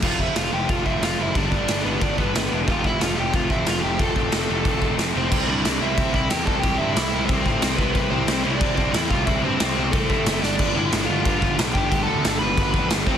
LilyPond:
<<
  \new Staff \with { instrumentName = "Overdriven electric guitar" } { \time 4/4 \key c \major \tempo 4 = 182 <f' f''>8 <e' e''>8 <f' f''>8 <g' g''>8 <f' f''>8 <e' e''>8 <f' f''>8 <e' e''>8 | <d' d''>8 <d' d''>4 <b b'>8 <d' d''>8 <b b'>8 <b b'>8. r16 | <f' f''>8 <e' e''>8 <f' f''>8 <g' g''>8 <f' f''>8 <e' e''>8 <f' f''>8 <g' g''>8 | <a' a''>2. r8 <c' c''>8 |
<c' c''>8 <d' d''>4 <e' e''>4 <e' e''>8 <g' g''>8 <a' a''>8 | <g' g''>8 <e' e''>8 <e' e''>4 <c' c''>4. <b b'>8 | <b b'>8 <c' c''>4 <d' d''>4 <d' d''>8 <e' e''>8 <f' f''>8 | <e' e''>8 <c' c''>8 <c' c''>4 <a a'>4. <d' d''>8 |
<d' d''>8 <e' e''>4 <f' f''>4 <f' f''>8 r8 <g' g''>8 | <g' g''>8 <a' a''>4 <b' b''>4 <b' b''>8 r8 <c' c''>8 | }
  \new Staff \with { instrumentName = "Distorted electric guitar" } { \clef bass \time 4/4 \key c \major <f, c f a c' f'>8 <f, c f a c' f'>8 <f, c f a c' f'>8 <f, c f a c' f'>8 <f, c f a c' f'>8 <f, c f a c' f'>8 <f, c f a c' f'>8 <f, c f a c' f'>8 | <g, d g b d'>8 <g, d g b d'>8 <g, d g b d'>8 <g, d g b d'>8 <g, d g b d'>8 <g, d g b d'>8 <g, d g b d'>8 <g, d g b d'>8 | <f, c f a c'>8 <f, c f a c'>8 <f, c f a c'>8 <f, c f a c'>8 <f, c f a c'>8 <f, c f a c'>8 <f, c f a c'>8 <f, c f a c'>8 | <f, c f a c'>8 <f, c f a c'>8 <f, c f a c'>8 <f, c f a c'>8 <f, c f a c'>8 <f, c f a c'>8 <f, c f a c'>8 <f, c f a c'>8 |
<c g c' e'>8 <c g c' e'>8 <c g c' e'>8 <c g c' e'>8 <c g c' e'>8 <c g c' e'>8 <c g c' e'>8 <c g c' e'>8 | <c g c' e'>8 <c g c' e'>8 <c g c' e'>8 <c g c' e'>8 <c g c' e'>8 <c g c' e'>8 <c g c' e'>8 <c g c' e'>8 | <c g c' e'>8 <c g c' e'>8 <c g c' e'>8 <c g c' e'>8 <c g c' e'>8 <c g c' e'>8 <c g c' e'>8 <c g c' e'>8 | <c g c' e'>8 <c g c' e'>8 <c g c' e'>8 <c g c' e'>8 <c g c' e'>8 <c g c' e'>8 <c g c' e'>8 <g, d g b d'>8 |
<g, d g b d'>8 <g, d g b d'>8 <g, d g b d'>8 <g, d g b d'>8 <g, d g b d'>8 <g, d g b d'>8 <g, d g b d'>8 <g, d g b d'>8 | <g, d g b d'>8 <g, d g b d'>8 <g, d g b d'>8 <g, d g b d'>8 <g, d g b d'>8 <g, d g b d'>8 <g, d g b d'>8 <f, c f a c'>8 | }
  \new Staff \with { instrumentName = "Picked electric bass" } { \clef bass \time 4/4 \key c \major f,,4 f,,8 f,,8 f,,8 f,,8 f,,8 fis,,8 | g,,8 g,,8 g,,8 g,,8 g,,8 g,,8 g,,8 e,,8 | f,,4 f,,8 f,,8 f,,8 f,,8 f,,8 f,,8 | f,,8 f,,8 f,,8 f,,8 f,,8 f,,8 f,,8 f,,8 |
c,8 c,8 c,8 c,8 c8 c,8 e,8 c,8 | c,8 g,8 c,8 c,8 c,8 a,8 c,4 | c,8 c,8 c,8 c,8 c8 c,8 e,8 c,8 | c,8 g,8 c,8 c,8 c,8 a,8 fis,,8 g,,8 |
g,,8 g,,8 g,,8 g,,8 g,8 g,,8 b,,8 g,,8 | g,,8 d,8 g,,8 g,,8 g,,8 f,8 g,,8 f,,8 | }
  \new DrumStaff \with { instrumentName = "Drums" } \drummode { \time 4/4 <cymc bd>8 bd8 <cymc sn>4 <cymc bd>8 bd8 <cymc sn>4 | <cymc bd>8 bd8 <cymc sn>4 <cymc bd>8 bd8 <cymc sn>4 | <cymc bd>8 bd8 <cymc sn>4 <cymc bd>8 bd8 <cymc sn>4 | <cymc bd>8 bd8 <cymc sn>4 <cymc bd>8 bd8 <cymc sn>4 |
<cymc bd>4 <cymc sn>4 <cymc bd>8 bd8 <cymc sn>8 bd8 | <cymc bd>4 <cymc sn>4 <cymc bd>8 bd8 <cymc sn>8 bd8 | <cymc bd>4 <cymc sn>4 <cymc bd>8 bd8 <cymc sn>8 bd8 | <cymc bd>4 <cymc sn>4 <cymc bd>8 bd8 <cymc sn>8 sn8 |
<cymc bd>4 <cymc sn>4 <cymc bd>8 bd8 <cymc sn>8 bd8 | <cymc bd>4 <cymc sn>4 <cymc bd>8 bd8 <cymc sn>8 bd8 | }
>>